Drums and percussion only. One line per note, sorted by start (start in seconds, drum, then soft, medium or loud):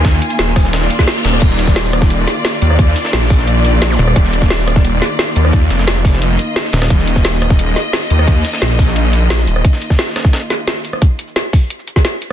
0.05 kick loud
0.05 snare loud
0.05 closed hi-hat loud
0.05 closed hi-hat medium
0.22 closed hi-hat medium
0.22 shaker medium
0.30 closed hi-hat medium
0.30 shaker soft
0.39 snare loud
0.39 closed hi-hat medium
0.39 closed hi-hat loud
0.47 snare soft
0.56 kick loud
0.56 cross-stick medium
0.56 closed hi-hat medium
0.56 open hi-hat medium
0.56 shaker medium
0.65 snare soft
0.73 snare loud
0.73 closed hi-hat medium
0.73 closed hi-hat loud
0.82 snare soft
0.82 shaker soft
0.90 closed hi-hat medium
0.90 shaker medium
0.99 kick medium
0.99 snare soft
1.08 snare loud
1.08 closed hi-hat loud
1.08 closed hi-hat medium
1.16 snare medium
1.25 snare loud
1.25 closed hi-hat medium
1.25 shaker medium
1.33 cross-stick soft
1.42 kick loud
1.42 closed hi-hat loud
1.42 closed hi-hat medium
1.42 crash medium
1.50 snare soft
1.59 closed hi-hat medium
1.59 shaker medium
1.67 kick medium
1.67 snare soft
1.67 shaker soft
1.76 snare loud
1.76 closed hi-hat loud
1.76 closed hi-hat medium
1.85 snare soft
1.93 cross-stick medium
1.93 closed hi-hat medium
1.93 shaker medium
2.02 kick loud
2.02 snare soft
2.10 closed hi-hat medium
2.10 closed hi-hat loud
2.19 shaker soft
2.27 snare soft
2.27 closed hi-hat medium
2.27 shaker medium
2.45 snare loud
2.45 closed hi-hat medium
2.45 closed hi-hat loud
2.62 closed hi-hat medium
2.62 shaker medium
2.70 cross-stick soft
2.79 kick loud
2.79 closed hi-hat loud
2.79 closed hi-hat medium
2.96 snare soft
2.96 closed hi-hat medium
2.96 shaker medium
3.05 snare medium
3.05 shaker soft
3.13 snare loud
3.13 closed hi-hat medium
3.22 snare soft
3.30 kick loud
3.30 closed hi-hat medium
3.30 open hi-hat medium
3.30 shaker medium
3.39 snare soft
3.47 closed hi-hat loud
3.47 closed hi-hat medium
3.56 shaker soft
3.65 closed hi-hat medium
3.65 shaker medium
3.82 snare loud
3.82 closed hi-hat medium
3.90 snare medium
3.99 closed hi-hat medium
3.99 shaker medium
4.07 cross-stick soft
4.16 kick loud
4.16 closed hi-hat loud
4.16 closed hi-hat medium
4.25 snare soft
4.33 closed hi-hat medium
4.33 shaker medium
4.42 kick medium
4.42 snare soft
4.42 shaker soft
4.50 snare loud
4.50 closed hi-hat medium
4.59 snare soft
4.68 cross-stick medium
4.68 closed hi-hat medium
4.68 shaker medium
4.76 kick loud
4.76 snare soft
4.85 closed hi-hat medium
4.93 shaker soft
5.02 snare soft
5.02 closed hi-hat medium
5.02 shaker medium
5.19 snare loud
5.19 closed hi-hat medium
5.36 closed hi-hat medium
5.36 shaker medium
5.45 cross-stick soft
5.53 kick loud
5.53 closed hi-hat medium
5.70 snare soft
5.70 closed hi-hat medium
5.70 shaker medium
5.79 snare medium
5.79 shaker soft
5.88 snare loud
5.88 closed hi-hat medium
5.96 snare soft
6.05 kick loud
6.05 closed hi-hat medium
6.05 open hi-hat medium
6.05 shaker medium
6.13 snare soft
6.22 closed hi-hat medium
6.30 shaker soft
6.39 closed hi-hat medium
6.39 shaker medium
6.56 snare loud
6.56 closed hi-hat medium
6.65 snare medium
6.73 snare loud
6.73 closed hi-hat medium
6.73 shaker medium
6.82 cross-stick soft
6.82 snare loud
6.82 closed hi-hat medium
6.90 kick loud
6.90 closed hi-hat medium
6.99 snare soft
7.07 closed hi-hat medium
7.07 shaker medium
7.16 kick medium
7.16 snare soft
7.16 shaker soft
7.25 snare loud
7.25 closed hi-hat medium
7.33 snare soft
7.42 cross-stick medium
7.42 closed hi-hat medium
7.42 shaker medium
7.50 kick loud
7.50 snare soft
7.59 closed hi-hat medium
7.68 shaker soft
7.76 snare soft
7.76 closed hi-hat medium
7.76 shaker medium
7.93 snare loud
7.93 closed hi-hat medium
8.10 closed hi-hat medium
8.10 shaker medium
8.19 cross-stick soft
8.28 kick loud
8.28 closed hi-hat medium
8.28 closed hi-hat loud
8.45 snare soft
8.45 closed hi-hat medium
8.45 shaker medium
8.53 snare medium
8.53 shaker soft
8.62 snare loud
8.62 closed hi-hat medium
8.70 snare soft
8.79 kick loud
8.79 closed hi-hat medium
8.79 open hi-hat medium
8.79 shaker medium
8.88 snare soft
8.96 closed hi-hat medium
9.05 shaker soft
9.13 closed hi-hat medium
9.13 shaker medium
9.30 snare loud
9.30 closed hi-hat medium
9.39 snare medium
9.47 closed hi-hat medium
9.47 shaker medium
9.56 cross-stick soft
9.65 kick loud
9.65 closed hi-hat medium
9.65 closed hi-hat loud
9.73 snare soft
9.82 closed hi-hat medium
9.82 shaker medium
9.90 kick medium
9.90 snare soft
9.90 shaker soft
9.99 snare loud
9.99 closed hi-hat medium
9.99 closed hi-hat loud
10.07 snare soft
10.16 cross-stick medium
10.16 snare loud
10.16 closed hi-hat medium
10.16 shaker medium
10.25 kick loud
10.25 snare soft
10.33 snare loud
10.33 closed hi-hat loud
10.33 closed hi-hat medium
10.42 shaker soft
10.50 snare soft
10.50 closed hi-hat medium
10.50 shaker medium
10.67 snare loud
10.67 closed hi-hat medium
10.67 closed hi-hat loud
10.85 closed hi-hat medium
10.85 shaker medium
10.93 cross-stick soft
11.02 kick loud
11.02 closed hi-hat loud
11.19 closed hi-hat medium
11.19 shaker medium
11.28 shaker soft
11.36 snare loud
11.36 closed hi-hat loud
11.53 kick loud
11.53 open hi-hat medium
11.53 shaker medium
11.70 closed hi-hat loud
11.79 shaker soft
11.88 closed hi-hat medium
11.88 shaker medium
11.96 kick medium
11.96 snare soft
12.05 snare loud
12.05 closed hi-hat loud
12.22 closed hi-hat medium
12.22 shaker medium